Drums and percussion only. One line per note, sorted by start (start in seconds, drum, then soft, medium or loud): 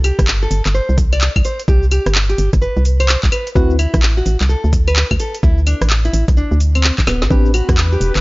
0.04 open hi-hat loud
0.04 claves medium
0.04 shaker medium
0.19 kick loud
0.19 cross-stick medium
0.19 closed hi-hat medium
0.19 shaker soft
0.28 clap loud
0.28 shaker soft
0.42 shaker soft
0.51 open hi-hat loud
0.51 shaker medium
0.66 cross-stick soft
0.66 clap medium
0.66 closed hi-hat medium
0.66 shaker soft
0.74 shaker soft
0.89 shaker soft
0.98 kick loud
0.98 open hi-hat loud
0.98 shaker medium
1.13 closed hi-hat medium
1.13 claves medium
1.13 shaker soft
1.21 clap loud
1.21 shaker soft
1.36 kick medium
1.36 closed hi-hat medium
1.36 claves medium
1.36 shaker soft
1.45 open hi-hat loud
1.45 shaker medium
1.59 closed hi-hat medium
1.59 shaker soft
1.68 kick loud
1.68 shaker soft
1.83 shaker soft
1.91 open hi-hat loud
1.91 claves medium
1.91 shaker medium
2.06 cross-stick medium
2.06 closed hi-hat medium
2.06 shaker soft
2.15 clap loud
2.15 shaker soft
2.30 closed hi-hat soft
2.30 shaker soft
2.38 open hi-hat loud
2.38 shaker medium
2.53 kick loud
2.53 cross-stick soft
2.53 closed hi-hat medium
2.53 shaker soft
2.62 shaker soft
2.77 shaker soft
2.85 open hi-hat loud
2.85 shaker medium
3.00 closed hi-hat medium
3.00 claves medium
3.00 shaker soft
3.09 clap loud
3.09 shaker soft
3.24 kick medium
3.24 clap medium
3.24 closed hi-hat medium
3.24 shaker soft
3.32 open hi-hat loud
3.32 claves medium
3.32 shaker medium
3.47 closed hi-hat medium
3.47 shaker soft
3.56 kick loud
3.56 shaker soft
3.70 shaker soft
3.79 open hi-hat loud
3.79 claves medium
3.79 shaker medium
3.94 kick loud
3.94 cross-stick medium
3.94 closed hi-hat medium
3.94 shaker soft
4.03 clap loud
4.03 shaker soft
4.17 shaker soft
4.26 open hi-hat loud
4.26 shaker medium
4.41 cross-stick soft
4.41 clap medium
4.41 closed hi-hat medium
4.41 shaker soft
4.49 shaker soft
4.64 shaker soft
4.73 kick loud
4.73 open hi-hat loud
4.73 shaker medium
4.88 closed hi-hat medium
4.88 claves medium
4.88 shaker soft
4.96 clap loud
4.96 shaker soft
5.11 kick medium
5.11 closed hi-hat medium
5.11 claves medium
5.11 shaker soft
5.20 open hi-hat loud
5.20 shaker medium
5.35 closed hi-hat medium
5.35 shaker soft
5.43 kick loud
5.43 shaker soft
5.58 shaker soft
5.67 open hi-hat loud
5.67 claves medium
5.67 shaker medium
5.82 cross-stick medium
5.82 closed hi-hat medium
5.82 shaker soft
5.90 clap loud
5.90 shaker soft
6.05 closed hi-hat soft
6.05 shaker soft
6.14 open hi-hat loud
6.14 shaker medium
6.28 kick loud
6.28 cross-stick soft
6.28 closed hi-hat medium
6.28 shaker soft
6.37 shaker soft
6.52 shaker soft
6.60 open hi-hat loud
6.60 shaker medium
6.75 closed hi-hat medium
6.75 claves medium
6.75 shaker soft
6.84 clap loud
6.84 shaker soft
6.99 kick medium
6.99 clap medium
6.99 closed hi-hat medium
6.99 shaker soft
7.07 snare medium
7.07 open hi-hat loud
7.07 claves medium
7.07 shaker medium
7.22 snare medium
7.22 closed hi-hat medium
7.22 shaker soft
7.31 kick loud
7.31 shaker soft
7.46 shaker soft
7.54 open hi-hat loud
7.54 claves medium
7.54 shaker medium
7.69 kick loud
7.69 cross-stick medium
7.69 closed hi-hat medium
7.69 shaker soft
7.78 clap loud
7.78 shaker soft
7.92 shaker soft
8.01 open hi-hat loud
8.01 shaker medium
8.16 cross-stick soft
8.16 clap medium
8.16 closed hi-hat medium
8.16 shaker soft